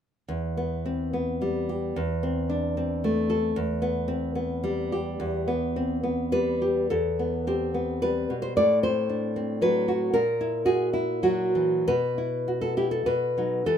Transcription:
0.28 E2
0.57 B3
0.85 C4
1.13 B3
1.42 G3
1.69 G4
1.96 E2
2.23 C4
2.50 D4
2.77 C4
3.04 A3
3.30 A4
3.56 E2
3.82 B3
4.08 C4
4.35 B3
4.64 G3
4.92 G4
5.20 E2
5.48 B3
5.76 C4
6.03 B3
6.32 G3 B4
6.62 G4
6.90 E2 A4
7.19 B3
7.47 C4 G4
7.74 B3
8.02 G3 B4
8.30 B2
8.42 C5
8.57 A2 D5
8.83 C4 C5
9.09 D4
9.36 C4
9.62 F#3 B4
9.88 F#4
10.13 A#2 A#4
10.41 E4
10.65 F#4 G#4
10.93 E4
11.23 F#3 F#4
11.55 E3
11.88 B2 B4
12.18 E4
12.48 F#4
12.61 A4
12.77 E4 G4
12.91 A4
13.06 B2 B4
13.38 F#3 D#4
13.66 E3 A4

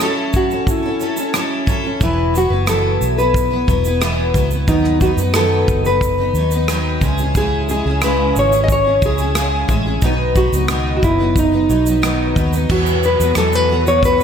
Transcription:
0.00 F#3 C#4 E4 A4, cross-stick, shaker
0.33 F#4, kick, shaker
0.50 C#4 E4 A4, shaker
0.67 kick, shaker
0.71 E4
0.82 C#4 E4 A4
0.99 F#3 C#4 E4 A4, shaker
1.16 C#4 E4 A4, shaker
1.34 F#3 C#4 E4 A4, cross-stick, shaker
1.66 F#3 C#4 E4 A4, kick, shaker
1.84 C#4 E4 A4
2.01 E1 E3 F#3 B3 E4 B4, kick, shaker
2.34 F#3 B3 E4 F#4 B4, shaker
2.50 F#1 B3 E4 B4
2.66 E3 F#3 B3 E4 A4 B4, cross-stick, shaker
3.01 B1, shaker
3.17 B3 E4 B4, shaker
3.34 kick, shaker
3.51 B3 E4 B4
3.67 E1 F#3 B3 E4 B4, kick, shaker
3.85 B3 E4 B4, shaker
4.01 E3 F#3 B3 E4 B4, cross-stick, shaker
4.34 C#2 F#3 B3 E4 B4, kick, shaker
4.51 B3 E4 B4, shaker
4.68 D#2 D#3 F#3 B3 D#4 B4, kick, shaker
4.84 cross-stick
5.01 F#3 B3 D#4 F#4 B4, kick, shaker
5.17 F#2 D#4 B4, shaker
5.21 B3
5.34 D#3 F#3 B3 D#4 A4 B4, cross-stick, shaker
5.68 F#1, kick, shaker
5.85 B3 D#4 B4, shaker
6.01 kick, shaker
6.18 B3 D#4 B4
6.34 D#2 F#3 B3, shaker
6.38 D#4 B4
6.51 D#4 B4, shaker
6.55 B3
6.68 D#3 F#3 B3 D#4 B4, cross-stick, shaker
7.01 C#2 G#3 C#4 E4 G#4, kick, shaker
7.18 E4 G#4, shaker
7.22 C#4
7.35 C#3 G#3 C#4 E4 G#4, kick, shaker
7.69 G#3 C#4 E4 G#4, shaker
7.84 C#2 C#4 E4 G#4
8.02 C#3 G#3 C#4 E4 G#4 B4, cross-stick, shaker
8.36 G#1 C#5, shaker
8.51 C#4 E4 G#4, shaker
8.64 D#5
8.68 C#5, kick, shaker
8.84 C#4 E4 G#4
9.01 C#2 G#3 C#4 E4 G#4, kick, shaker
9.06 G#4
9.18 C#4 E4 G#4, shaker
9.35 C#3 G#3 C#4 E4 G#4, cross-stick, shaker
9.68 A1 G#3 C#4 E4 G#4, kick, shaker
9.86 C#4 E4 G#4
10.02 B1 B2 D#3 F#3 B3 D#4 B4, kick, shaker
10.36 F#3 B3 D#4 F#4 B4, kick, shaker
10.52 C#2 F#3 B3 D#4 B4, shaker
10.68 B2 D#3 F#3 B3 D#4 B4, cross-stick, shaker
10.97 F#4
11.03 F#1 E4, kick, shaker
11.18 F#3 B3 D#4 B4
11.36 D#4, kick, shaker
11.52 F#3 B3 D#4 B4
11.69 B1 F#3 B3 D#4 B4, shaker
11.86 F#3 B3 D#4 B4, shaker
12.02 B2 D#3 F#3 B3 D#4 B4, cross-stick, shaker
12.35 D#2 F#3 B3 D#4 B4, kick, shaker
12.53 F#3 B3 D#4 B4, shaker
12.69 E2 B2 E3 F#3 B3 E4 F#4 B4, kick, crash
12.86 shaker
13.02 F#3 B3 F#4 B4, shaker
13.19 E2 B3 F#4 B4, shaker
13.35 E2 E3 F#3 B3 F#4 A4 B4, cross-stick, shaker
13.53 B4, shaker
13.69 F#3 B3 F#4 B4
13.85 B3 F#4 B4 C#5, shaker
14.03 B4, kick, shaker
14.18 B3 F#4 B4, shaker

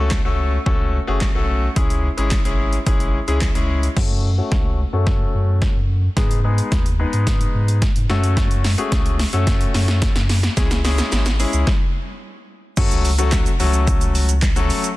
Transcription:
Already playing: C#2 A3 C#4 F#4 A4
0.11 kick, snare, clap
0.25 C#2 A3 C#4 F#4 A4
0.66 C#2 A3 C#4 F#4 A4, kick
1.07 F#1 A3 C#4 F#4 G#4
1.21 kick, snare, clap
1.35 B1 A3 C#4 F#4 A4
1.76 C#2 G#3 C#4 E4 G#4, kick, closed hi-hat
1.90 closed hi-hat
2.17 G#1 G#3 C#4 E4 G#4, closed hi-hat
2.31 kick, snare, clap, closed hi-hat
2.45 G#1 G#3 C#4 E4 G#4, closed hi-hat
2.73 closed hi-hat
2.86 G#1 G#3 C#4 E4 G#4, kick, closed hi-hat
3.00 closed hi-hat
3.28 C#2 G#3 C#4 E4 G#4, closed hi-hat
3.41 kick, snare, clap, closed hi-hat
3.55 C#2 G#3 C#4 E4 G#4, closed hi-hat
3.83 closed hi-hat
3.96 F#2 A3 C#4 F#4 A4, kick, snare, crash
4.38 A3 C#4 F#4 A4
4.52 C#2, kick, snare
4.93 F#2 A3 C#4 F#4 A4
5.07 kick, snare
5.34 F#2
5.62 kick, snare
5.75 F#2
6.16 G#2 G#3 B3 D#4 G#4, kick, snare, closed hi-hat
6.31 closed hi-hat
6.44 G#3 B3 D#4 G#4
6.58 closed hi-hat
6.72 D#2, kick, snare, closed hi-hat
6.86 closed hi-hat
6.99 G#3 B3 D#4 G#4
7.13 G#2, closed hi-hat
7.27 kick, snare, closed hi-hat
7.41 closed hi-hat
7.54 G#2
7.68 closed hi-hat
7.82 kick, snare, closed hi-hat
7.96 G#2, closed hi-hat
8.09 F#2 A3 C#4 F#4 A4, snare
8.23 closed hi-hat
8.37 kick, snare, closed hi-hat
8.51 closed hi-hat
8.64 snare, open hi-hat
8.78 A3 C#4 F#4 G#4, closed hi-hat
8.92 C#2, kick, snare, closed hi-hat
9.06 closed hi-hat
9.19 snare, open hi-hat
9.33 F#2 A3 C#4 F#4 A4, closed hi-hat
9.47 kick, snare, closed hi-hat
9.61 closed hi-hat
9.74 F#2, snare, open hi-hat
9.88 snare, closed hi-hat
10.02 kick, snare, closed hi-hat
10.16 F#2, snare, closed hi-hat
10.29 snare, open hi-hat
10.43 snare, closed hi-hat
10.57 C#2 G#3 C#4 E4 G#4, kick, snare, closed hi-hat, shaker
10.71 snare, closed hi-hat, shaker
10.84 G#3 C#4 E4 G#4, snare, open hi-hat, shaker
10.98 snare, closed hi-hat, shaker
11.12 G#1, snare, closed hi-hat, shaker
11.26 snare, closed hi-hat, shaker
11.39 G#3 C#4 E4 G#4, open hi-hat, shaker
11.53 C#2, closed hi-hat, shaker
11.67 kick, snare
12.77 F#2 F#3 A3 C#4 F#4 A4, kick, closed hi-hat, crash, shaker
12.91 C#2, closed hi-hat, shaker
13.05 open hi-hat, shaker
13.18 F#3 A3 C#4 F#4 A4, closed hi-hat, shaker
13.32 kick, snare, clap, closed hi-hat, shaker
13.46 closed hi-hat, shaker
13.60 C#2 F#3 A3 C#4 F#4 A4, open hi-hat, shaker
13.73 closed hi-hat, shaker
13.87 kick, closed hi-hat, shaker
14.01 closed hi-hat, shaker
14.15 open hi-hat, shaker
14.29 closed hi-hat, shaker
14.42 kick, snare, clap, closed hi-hat, shaker
14.56 F#3 A3 C#4 F#4 A4, closed hi-hat, shaker
14.70 open hi-hat, shaker
14.84 closed hi-hat, shaker

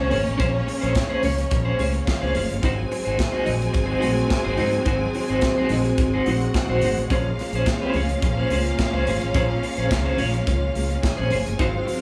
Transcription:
Already playing: G#3 A#3 C#4 C5 C#5
0.10 G#1 C#4 G#4 C5, open hi-hat, muted conga, high conga, low conga
0.25 A1, muted clean electric guitar stroke, closed hi-hat
0.38 A#1 C#4 G#4 C5, kick, closed hi-hat, muted conga, low conga
0.53 muted clean electric guitar stroke
0.67 muted clean electric guitar stroke, open hi-hat, muted conga
0.81 A#1 C#4 G#4 C5, closed hi-hat
0.95 muted clean electric guitar stroke, kick, snare, closed hi-hat
1.09 C#4 G#4 C5
1.23 C#2 C#4 G#4 C#5, open hi-hat, muted conga, high conga, low conga
1.37 muted clean electric guitar stroke, closed hi-hat
1.51 A#1, muted clean electric guitar stroke, kick, closed hi-hat
1.65 C#4 G#4 C5
1.79 C#2 C#4 G#4 C5, open hi-hat, muted conga, high conga
1.94 muted clean electric guitar stroke, closed hi-hat
2.07 F4 F5, muted clean electric guitar stroke, kick, snare, closed hi-hat
2.21 C#2 C#4 G#4 C5
2.35 F#1 C#4 G#4 C5, open hi-hat, muted conga, high conga, low conga
2.50 G1, muted clean electric guitar stroke, closed hi-hat
2.61 G#1 F#3 C4 D#4 F#4 G#4 G#5, kick, closed hi-hat, muted conga, low conga
2.65 C5
2.79 muted clean electric guitar stroke
2.91 muted clean electric guitar stroke, open hi-hat, muted conga
3.05 G#1 D#4 F#4 C5, closed hi-hat
3.18 muted clean electric guitar stroke, kick, snare, closed hi-hat, muted conga
3.32 D#4 F#4 C5
3.44 A#1 D#4 F#4 D#5, open hi-hat, high conga, low conga
3.60 muted clean electric guitar stroke, closed hi-hat
3.73 G#1, muted clean electric guitar stroke, kick, closed hi-hat, muted conga
3.86 D#4 F#4 C5
3.99 D#4 F#4 C5, open hi-hat
4.03 A#1, muted conga, high conga
4.15 muted clean electric guitar stroke, closed hi-hat
4.28 muted clean electric guitar stroke, kick, snare, closed hi-hat, muted conga
4.44 G#1 D#4 F#4 C5
4.57 G#2 D#4 F#4 C5, open hi-hat, muted conga, high conga, low conga
4.72 muted clean electric guitar stroke, closed hi-hat
4.85 G#1 D#4 F#4 C5, kick, closed hi-hat, low conga
5.01 muted clean electric guitar stroke
5.14 muted clean electric guitar stroke, open hi-hat
5.28 G#1 D#4 F#4 C5, closed hi-hat
5.41 muted clean electric guitar stroke, kick, snare, closed hi-hat, muted conga
5.58 D#4 F#4 C5
5.69 A#1 D#4 F#4 D#5, open hi-hat, muted conga, high conga, low conga
5.85 muted clean electric guitar stroke, closed hi-hat
5.98 G#1, muted clean electric guitar stroke, kick, closed hi-hat
6.14 D#4 F#4 C5
6.26 A#1 D#4 F#4 C5 F#5, open hi-hat, high conga
6.41 muted clean electric guitar stroke, closed hi-hat
6.54 muted clean electric guitar stroke, kick, snare, closed hi-hat, muted conga
6.69 A#1 D#4 F#4 C5
6.81 G#1 D#4 F#4, open hi-hat, muted conga, high conga, low conga
6.86 C5
6.97 A1, muted clean electric guitar stroke, closed hi-hat
7.10 A#1 A#3 C#4 F4 G#4 C5 F5, kick, closed hi-hat, low conga
7.27 muted clean electric guitar stroke
7.39 muted clean electric guitar stroke, open hi-hat, muted conga
7.53 A#1 G#4 C5, closed hi-hat
7.57 C#4
7.66 muted clean electric guitar stroke, kick, snare, closed hi-hat, muted conga
7.82 C#4 G#4 C5
7.93 C#2 C#4 G#4 C#5, open hi-hat, muted conga, high conga, low conga
8.09 muted clean electric guitar stroke, closed hi-hat
8.22 A#1, muted clean electric guitar stroke, kick, closed hi-hat, muted conga
8.37 C#4 G#4 C5
8.50 C#2 C#4 G#4 C5, open hi-hat, muted conga, high conga
8.66 closed hi-hat
8.78 muted clean electric guitar stroke, kick, snare, closed hi-hat, muted conga
8.93 C#2 C#4 G#4 C5
9.06 G#1 C#4 G#4 C5, open hi-hat, muted conga, high conga, low conga
9.21 A1, muted clean electric guitar stroke, closed hi-hat
9.34 A#1 C#4 G#4 C5, kick, closed hi-hat, muted conga, low conga
9.50 muted clean electric guitar stroke
9.63 muted clean electric guitar stroke, open hi-hat
9.77 A#1 C#4 G#4 C5, closed hi-hat
9.91 C#2, muted clean electric guitar stroke, kick, snare, closed hi-hat
10.05 C#4 G#4 C5
10.18 A#1 C#4 G#4 C#5, open hi-hat, muted conga, high conga, low conga
10.34 muted clean electric guitar stroke, closed hi-hat
10.47 C#2, muted clean electric guitar stroke, kick, closed hi-hat, muted conga
10.62 muted clean electric guitar stroke
10.75 C#2, open hi-hat, high conga
10.90 muted clean electric guitar stroke, closed hi-hat
11.03 G#4 G#5, muted clean electric guitar stroke, kick, snare, closed hi-hat
11.17 A#1 C#4 G#4 C5
11.30 F#1 C#4 G#4 C5, open hi-hat, high conga, low conga
11.45 G1, muted clean electric guitar stroke, closed hi-hat
11.59 G#1 F#3 G#3 C4 D#4 F4 F#4 C5 F5, kick, closed hi-hat, muted conga, low conga
11.74 muted clean electric guitar stroke
11.85 muted clean electric guitar stroke, open hi-hat, muted conga

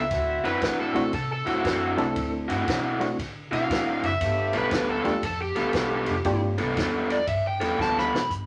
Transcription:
Already playing: E5
0.11 D2 C4 D4 E4 F#4, kick, snare, ride
0.44 F#2 D3 C4 E4 F#4 B4, snare, ride
0.61 A2 D3 C4 E4 F#4, kick, snare, ride
0.80 A4
0.94 B2 A3 C4 D4 E4 F#4, snare, ride
1.13 C3 A4, kick, snare, ride
1.33 A4
1.45 A2 D3 C4 D4 E4 F#4, snare, ride
1.64 F#2 D3 C4 E4 F#4, kick, snare, ride
1.97 C2 A3 C4 D4 E4 A4, snare, ride
2.16 D2, kick, snare, ride
2.48 G2 D3 C4 E4 F#4, snare, ride
2.67 B2 D3 C4 E4 F#4, kick, snare, ride
2.99 A3 C4 D4 E4 F#4, snare, ride
3.19 D3, kick, snare, ride
3.51 B2 D3 C4 E4 F#4 F5, snare, ride
3.69 A2 D3 C4 E4 F#4, kick, snare, ride
4.03 F#1 E5, snare, ride
4.21 G1 A3 B3 F4 G4, kick, snare, ride
4.53 B1 G3 B3 F4 A4 B4, snare, ride
4.71 D2 G3 B3 F4 A4, kick, snare, ride
4.91 A4
5.04 E2 A3 B3 D4 F4 G4, snare, ride
5.23 F2 A4, kick, snare, ride
5.42 G4
5.56 D2 G3 A3 B3 F4 A4, snare, ride
5.73 B1 G3 B3 F4 A4, kick, snare, ride
6.06 F1, snare, ride
6.24 G1 A3 B3 D4 F4 G4, kick, snare, ride
6.58 C2 G3 B3 F4 A4, snare, ride
6.76 E2 G3 B3 F4 A4, kick, snare, ride
7.10 D5, snare, ride
7.27 G2 E5, kick, ride
7.47 G5
7.60 E2 G3 B3 F4 A4, snare, ride
7.78 D2 G3 B3 F4 A4 A5, kick, snare
7.98 B5, snare
8.11 B1
8.15 snare
8.30 G1, kick, closed hi-hat

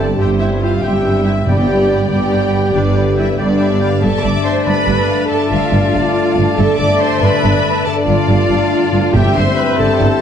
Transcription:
Already playing: G1 G2 G3 C4 E4 G4 A4 D5 A5
0.00 C4
0.18 G1 G2 G3 C4 G4 C5 E5 G5 C6
0.23 G3
0.39 C4 E4 E5 G5 C6
0.61 E4 F4 E5 F5 G5
0.66 C6
0.82 G1 G2 G3 C4 G4 E5 G5
0.88 C6
1.04 E4 E5 G5
1.09 C6
1.25 C4 E4 E5 G5
1.30 C6
1.46 G1 G2 G3 B3 G4 D5 G5
1.51 B5
1.67 B3 D5 G5
1.71 B5
1.88 D4 D5 G5 B5
2.10 G1 G2 G3 B3 G4 D5 G5 B5
2.31 D4 D5 G5 B5
2.53 B3 D5 G5 B5
2.73 G1 G2 D3 G3 B3 D4 B4 D5 G5 B5
2.95 B3 D5 G5 B5
3.16 D4 E4 D5 E5 G5 B5
3.37 G1 G2 G3 B3 D4 G4 D5 G5 B5
3.59 D4 D5 E5 G5 B5
3.80 D5 F5 G5 B5
4.02 G1 G2 A3 D4 A4 D5 E5 A5
4.22 G1 G2 A3 D5 D6
4.43 D4 C5 C6
4.65 G1 G2 A4 B4 D5 B5
4.87 G1 G2 D4 E5
5.07 A3 F5
5.28 G2 A4 D5 E5 A5
5.49 G1 G2 D3 F4 F5
5.72 G1 G2 D4
5.94 G1 G2 A4 D5
6.15 D4
6.36 G1 G2 A3
6.57 G1 G2 A4 D5 E5 A5
6.78 G1 G2 D3 D5 D6
7.00 D4 C5 C6
7.22 G1 G2 A4 B4 B5
7.43 G1 G2 D4
7.65 A3
7.85 G2 A4 D5 A5
8.06 G1 G2 D3 F4 F5
8.28 G1 G2 D4
8.49 G1 G2 A4
8.72 D4
8.92 G1 G2 A3
9.13 G1 G2 G3 C4 G4 E5 G5 C6
9.35 G1 G2 C4 C5 C6
9.56 E4 B4 B5
9.77 G1 G2 G4 A4 D5 A5
10.00 G1 G2 E4 C5

